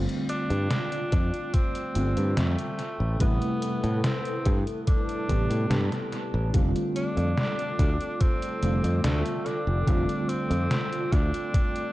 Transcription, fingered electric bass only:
0, 0, Header, 1, 2, 480
1, 0, Start_track
1, 0, Tempo, 833333
1, 1849, Time_signature, 4, 2, 24, 8
1, 6869, End_track
2, 0, Start_track
2, 0, Title_t, "Fingered electric bass"
2, 0, Program_c, 0, 33
2, 290, Note_on_c, 0, 43, 90
2, 386, Note_off_c, 0, 43, 0
2, 647, Note_on_c, 0, 41, 81
2, 749, Note_off_c, 0, 41, 0
2, 1127, Note_on_c, 0, 31, 87
2, 1229, Note_off_c, 0, 31, 0
2, 1251, Note_on_c, 0, 43, 84
2, 1347, Note_off_c, 0, 43, 0
2, 1368, Note_on_c, 0, 41, 86
2, 1469, Note_off_c, 0, 41, 0
2, 1729, Note_on_c, 0, 33, 93
2, 1826, Note_off_c, 0, 33, 0
2, 1847, Note_on_c, 0, 33, 98
2, 1949, Note_off_c, 0, 33, 0
2, 2211, Note_on_c, 0, 45, 91
2, 2307, Note_off_c, 0, 45, 0
2, 2568, Note_on_c, 0, 43, 87
2, 2669, Note_off_c, 0, 43, 0
2, 3048, Note_on_c, 0, 33, 90
2, 3149, Note_off_c, 0, 33, 0
2, 3169, Note_on_c, 0, 45, 82
2, 3266, Note_off_c, 0, 45, 0
2, 3285, Note_on_c, 0, 43, 91
2, 3388, Note_off_c, 0, 43, 0
2, 3651, Note_on_c, 0, 33, 93
2, 3747, Note_off_c, 0, 33, 0
2, 3768, Note_on_c, 0, 29, 95
2, 3869, Note_off_c, 0, 29, 0
2, 4130, Note_on_c, 0, 41, 89
2, 4226, Note_off_c, 0, 41, 0
2, 4488, Note_on_c, 0, 38, 81
2, 4589, Note_off_c, 0, 38, 0
2, 4968, Note_on_c, 0, 29, 84
2, 5069, Note_off_c, 0, 29, 0
2, 5090, Note_on_c, 0, 41, 86
2, 5186, Note_off_c, 0, 41, 0
2, 5207, Note_on_c, 0, 38, 86
2, 5309, Note_off_c, 0, 38, 0
2, 5570, Note_on_c, 0, 29, 95
2, 5666, Note_off_c, 0, 29, 0
2, 5687, Note_on_c, 0, 29, 93
2, 5789, Note_off_c, 0, 29, 0
2, 6051, Note_on_c, 0, 41, 90
2, 6146, Note_off_c, 0, 41, 0
2, 6407, Note_on_c, 0, 38, 84
2, 6509, Note_off_c, 0, 38, 0
2, 6869, End_track
0, 0, End_of_file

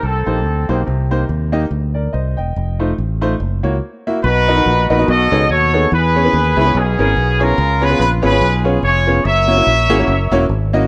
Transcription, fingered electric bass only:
0, 0, Header, 1, 2, 480
1, 0, Start_track
1, 0, Tempo, 421053
1, 994, Time_signature, 4, 2, 24, 8
1, 5312, Tempo, 416956
1, 12465, End_track
2, 0, Start_track
2, 0, Title_t, "Fingered electric bass"
2, 0, Program_c, 0, 33
2, 34, Note_on_c, 0, 36, 86
2, 268, Note_off_c, 0, 36, 0
2, 304, Note_on_c, 0, 34, 78
2, 506, Note_off_c, 0, 34, 0
2, 506, Note_on_c, 0, 38, 79
2, 744, Note_off_c, 0, 38, 0
2, 785, Note_on_c, 0, 35, 88
2, 961, Note_off_c, 0, 35, 0
2, 997, Note_on_c, 0, 36, 88
2, 1404, Note_off_c, 0, 36, 0
2, 1472, Note_on_c, 0, 39, 87
2, 1882, Note_off_c, 0, 39, 0
2, 1945, Note_on_c, 0, 38, 83
2, 2358, Note_off_c, 0, 38, 0
2, 2438, Note_on_c, 0, 36, 80
2, 2672, Note_off_c, 0, 36, 0
2, 2718, Note_on_c, 0, 28, 76
2, 2889, Note_off_c, 0, 28, 0
2, 2922, Note_on_c, 0, 29, 84
2, 3328, Note_off_c, 0, 29, 0
2, 3401, Note_on_c, 0, 33, 83
2, 3807, Note_off_c, 0, 33, 0
2, 3874, Note_on_c, 0, 30, 84
2, 4109, Note_off_c, 0, 30, 0
2, 4145, Note_on_c, 0, 37, 82
2, 4321, Note_off_c, 0, 37, 0
2, 4832, Note_on_c, 0, 35, 105
2, 5238, Note_off_c, 0, 35, 0
2, 5312, Note_on_c, 0, 34, 108
2, 5547, Note_off_c, 0, 34, 0
2, 5590, Note_on_c, 0, 34, 106
2, 5763, Note_off_c, 0, 34, 0
2, 5797, Note_on_c, 0, 35, 114
2, 6031, Note_off_c, 0, 35, 0
2, 6071, Note_on_c, 0, 37, 105
2, 6244, Note_off_c, 0, 37, 0
2, 6275, Note_on_c, 0, 39, 89
2, 6683, Note_off_c, 0, 39, 0
2, 6761, Note_on_c, 0, 40, 105
2, 7167, Note_off_c, 0, 40, 0
2, 7237, Note_on_c, 0, 39, 111
2, 7471, Note_off_c, 0, 39, 0
2, 7509, Note_on_c, 0, 37, 99
2, 7683, Note_off_c, 0, 37, 0
2, 7716, Note_on_c, 0, 35, 116
2, 7950, Note_off_c, 0, 35, 0
2, 7992, Note_on_c, 0, 32, 105
2, 8165, Note_off_c, 0, 32, 0
2, 8196, Note_on_c, 0, 35, 106
2, 8604, Note_off_c, 0, 35, 0
2, 8672, Note_on_c, 0, 37, 118
2, 9081, Note_off_c, 0, 37, 0
2, 9151, Note_on_c, 0, 34, 112
2, 9388, Note_off_c, 0, 34, 0
2, 9432, Note_on_c, 0, 32, 97
2, 9605, Note_off_c, 0, 32, 0
2, 9632, Note_on_c, 0, 35, 99
2, 10041, Note_off_c, 0, 35, 0
2, 10109, Note_on_c, 0, 29, 102
2, 10519, Note_off_c, 0, 29, 0
2, 10597, Note_on_c, 0, 30, 106
2, 11003, Note_off_c, 0, 30, 0
2, 11076, Note_on_c, 0, 34, 96
2, 11345, Note_off_c, 0, 34, 0
2, 11345, Note_on_c, 0, 32, 104
2, 11519, Note_off_c, 0, 32, 0
2, 11545, Note_on_c, 0, 30, 98
2, 11782, Note_off_c, 0, 30, 0
2, 11819, Note_on_c, 0, 28, 106
2, 11995, Note_off_c, 0, 28, 0
2, 12027, Note_on_c, 0, 32, 98
2, 12436, Note_off_c, 0, 32, 0
2, 12465, End_track
0, 0, End_of_file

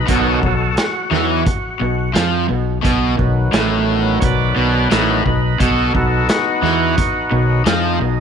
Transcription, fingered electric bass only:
0, 0, Header, 1, 3, 480
1, 0, Start_track
1, 0, Key_signature, 5, "major"
1, 0, Tempo, 689655
1, 56, Time_signature, 4, 2, 24, 8
1, 5708, End_track
2, 0, Start_track
2, 0, Title_t, "Fingered electric bass"
2, 0, Program_c, 0, 33
2, 61, Note_on_c, 0, 35, 92
2, 282, Note_off_c, 0, 35, 0
2, 296, Note_on_c, 0, 35, 82
2, 520, Note_off_c, 0, 35, 0
2, 774, Note_on_c, 0, 40, 92
2, 999, Note_off_c, 0, 40, 0
2, 1260, Note_on_c, 0, 35, 78
2, 1482, Note_off_c, 0, 35, 0
2, 1502, Note_on_c, 0, 41, 97
2, 1723, Note_off_c, 0, 41, 0
2, 1741, Note_on_c, 0, 35, 79
2, 1963, Note_off_c, 0, 35, 0
2, 1981, Note_on_c, 0, 35, 90
2, 2203, Note_off_c, 0, 35, 0
2, 2220, Note_on_c, 0, 35, 81
2, 2442, Note_off_c, 0, 35, 0
2, 2461, Note_on_c, 0, 33, 86
2, 2912, Note_off_c, 0, 33, 0
2, 2938, Note_on_c, 0, 35, 84
2, 3161, Note_off_c, 0, 35, 0
2, 3180, Note_on_c, 0, 35, 91
2, 3402, Note_off_c, 0, 35, 0
2, 3418, Note_on_c, 0, 33, 90
2, 3641, Note_off_c, 0, 33, 0
2, 3657, Note_on_c, 0, 35, 71
2, 3881, Note_off_c, 0, 35, 0
2, 3897, Note_on_c, 0, 35, 81
2, 4121, Note_off_c, 0, 35, 0
2, 4135, Note_on_c, 0, 35, 80
2, 4360, Note_off_c, 0, 35, 0
2, 4609, Note_on_c, 0, 40, 89
2, 4836, Note_off_c, 0, 40, 0
2, 5094, Note_on_c, 0, 35, 78
2, 5319, Note_off_c, 0, 35, 0
2, 5333, Note_on_c, 0, 41, 94
2, 5558, Note_off_c, 0, 41, 0
2, 5569, Note_on_c, 0, 35, 76
2, 5708, Note_off_c, 0, 35, 0
2, 5708, End_track
3, 0, Start_track
3, 0, Title_t, "Muted fingered electric bass strokes"
3, 1019, Note_on_c, 9, 29, 41
3, 1089, Note_off_c, 9, 29, 0
3, 4858, Note_on_c, 9, 29, 42
3, 4927, Note_off_c, 9, 29, 0
3, 5708, End_track
0, 0, End_of_file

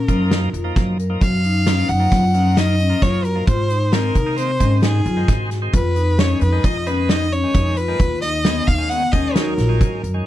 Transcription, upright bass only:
0, 0, Header, 1, 2, 480
1, 0, Start_track
1, 0, Key_signature, 6, "major"
1, 0, Tempo, 452148
1, 1288, Time_signature, 5, 2, 24, 8
1, 10896, End_track
2, 0, Start_track
2, 0, Title_t, "Upright bass"
2, 0, Program_c, 0, 32
2, 90, Note_on_c, 0, 42, 80
2, 505, Note_off_c, 0, 42, 0
2, 567, Note_on_c, 0, 41, 71
2, 775, Note_off_c, 0, 41, 0
2, 809, Note_on_c, 0, 42, 73
2, 1225, Note_off_c, 0, 42, 0
2, 1291, Note_on_c, 0, 42, 84
2, 1914, Note_off_c, 0, 42, 0
2, 2007, Note_on_c, 0, 42, 78
2, 2216, Note_off_c, 0, 42, 0
2, 2250, Note_on_c, 0, 42, 84
2, 3082, Note_off_c, 0, 42, 0
2, 3208, Note_on_c, 0, 42, 79
2, 3625, Note_off_c, 0, 42, 0
2, 3690, Note_on_c, 0, 44, 81
2, 4314, Note_off_c, 0, 44, 0
2, 4411, Note_on_c, 0, 48, 78
2, 4826, Note_off_c, 0, 48, 0
2, 4887, Note_on_c, 0, 44, 80
2, 5304, Note_off_c, 0, 44, 0
2, 5367, Note_on_c, 0, 42, 85
2, 5576, Note_off_c, 0, 42, 0
2, 5610, Note_on_c, 0, 44, 78
2, 6026, Note_off_c, 0, 44, 0
2, 6089, Note_on_c, 0, 41, 95
2, 6714, Note_off_c, 0, 41, 0
2, 6809, Note_on_c, 0, 41, 85
2, 7018, Note_off_c, 0, 41, 0
2, 7050, Note_on_c, 0, 41, 86
2, 7882, Note_off_c, 0, 41, 0
2, 8012, Note_on_c, 0, 41, 81
2, 8427, Note_off_c, 0, 41, 0
2, 8491, Note_on_c, 0, 39, 83
2, 9115, Note_off_c, 0, 39, 0
2, 9211, Note_on_c, 0, 39, 80
2, 9627, Note_off_c, 0, 39, 0
2, 9690, Note_on_c, 0, 39, 77
2, 10106, Note_off_c, 0, 39, 0
2, 10168, Note_on_c, 0, 34, 76
2, 10377, Note_off_c, 0, 34, 0
2, 10413, Note_on_c, 0, 44, 69
2, 10628, Note_off_c, 0, 44, 0
2, 10652, Note_on_c, 0, 42, 76
2, 10867, Note_off_c, 0, 42, 0
2, 10896, End_track
0, 0, End_of_file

